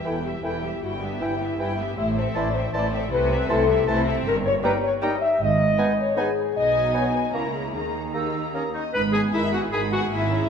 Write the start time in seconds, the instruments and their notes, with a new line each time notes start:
0.05 double bass section E1, cello section E2, bassoon E3, viola section E3, violin section E4 G5, clarinet E4, french horn section A4, oboe G5, flute section B5
0.24 viola section G3, french horn section G4, violin section G4 E5
0.43 double bass section E1, cello section E2, bassoon E3, viola section E3, clarinet E4, violin section E4 G5, french horn section A4, oboe G5, flute section B5
0.62 viola section G3, french horn section G4, violin section G4 E5
0.83 double bass section G1, cello section G2, viola section G3, violin section E4 G5, french horn section F#4
1.02 viola section B3, french horn section D4, violin section G4 E5
1.20 double bass section G1, cello section G2, bassoon E3, viola section G3, french horn section E4, clarinet E4, violin section E4 G5, oboe G5, flute section B5
1.40 viola section B3, violin section G4 E5
1.58 double bass section G1, cello section G2, bassoon E3, viola section G3, clarinet E4, violin section E4 G5, french horn section G4, oboe G5, flute section B5
1.78 viola section B3, violin section G4 E5
1.97 double bass section A1, cello section A2, viola section A3, violin section E4 C5, french horn section E5
2.16 viola section C4, violin section A4 E5, french horn section C5
2.35 double bass section A1, cello section A2, bassoon E3, viola section A3, violin section E4 C5, clarinet E4, french horn section D5, oboe A5, flute section C6
2.54 viola section C4, violin section A4 E5, french horn section C5
2.73 double bass section A1, cello section A2, bassoon E3, viola section A3, violin section E4 C5, clarinet E4, french horn section D5, oboe A5, flute section C6
2.92 viola section C4, violin section A4 E5, french horn section C5
3.11 double bass section C2, cello section C3, viola section A3, violin section E4 C5, french horn section B4
3.30 viola section C4, violin section A4 E5
3.49 double bass section C2, cello section C3, bassoon E3, viola section A3, violin section E4 C5, clarinet E4, french horn section A4, oboe A5, flute section C6
3.69 viola section C4, violin section A4 E5
3.87 double bass section C2, cello section C3, bassoon E3, viola section A3, violin section E4 C5, clarinet E4, oboe A5, flute section C6
4.06 viola section C4, violin section A4 E5
4.26 double bass section G1, cello section G2, french horn section A#4
4.45 french horn section C#5
4.63 bassoon G3, viola section A#3, violin section D#4 A#5, clarinet D#4, french horn section B4, oboe G5, flute section A#5
4.84 french horn section C#5
5.01 bassoon G3, viola section A#3, violin section D#4 A#5, clarinet D#4, french horn section D#5, oboe G5, flute section A#5
5.21 french horn section E5
5.41 double bass section G#1, cello section G#2, french horn section D#5
5.78 viola section B3, bassoon B3, violin section D#4 G#5, clarinet D#4, oboe G#5, flute section B5
5.98 french horn section C#5
6.17 viola section B3, bassoon B3, clarinet D#4, violin section D#4 G#5, french horn section G#4, oboe G#5, flute section B5
6.55 double bass section B1, cello section B2, viola section B3, violin section D#4 G#5, french horn section D#5
6.93 bassoon B3, clarinet D#4, french horn section C#5, oboe G#5, flute section B5
7.14 french horn section B4
7.33 double bass section C#2, cello section C#3, viola section A#3, bassoon A#3, violin section E4 A#5, clarinet E4, french horn section A#4, oboe A#5, flute section C#6
7.54 french horn section G#4
7.73 double bass section D#2, cello section D#3, viola section A#3, violin section D#4 A#5, french horn section G#4
8.13 viola section A#3, bassoon A#3, clarinet D#4, violin section D#4 A#5, french horn section G4, oboe A#5, flute section E6
8.53 bassoon A#3, clarinet C#4, flute section C#5 D#6, violin section C#5, oboe A#5
8.73 clarinet D#4, violin section D#5, flute section D#5 C#6
8.94 double bass section G#1, cello section G#2, viola section G#3 D#4, clarinet B4, flute section B5, violin section B5
9.13 viola section B3 G#4, clarinet G#4, flute section G#5, violin section G#5
9.32 double bass section G#1, cello section G#2, bassoon D#3, viola section G#3 D#4, french horn section G#3 D#4, clarinet E4, flute section E5, violin section E5 B5, oboe B5
9.51 viola section B3 G#4, clarinet F#4, flute section F#5, violin section F#5 G#5
9.71 double bass section G#1, cello section G#2, bassoon D#3, viola section G#3 D#4, french horn section G#3 D#4, clarinet G#4, flute section G#5, violin section G#5 B5, oboe B5
9.91 viola section B3 G#4, clarinet F#4, flute section F#5, violin section F#5 G#5
10.11 double bass section G#1, cello section G#2, viola section A#3 E4, clarinet E4, violin section E5 G#5, flute section E5
10.30 viola section C#4 G#4, violin section A#5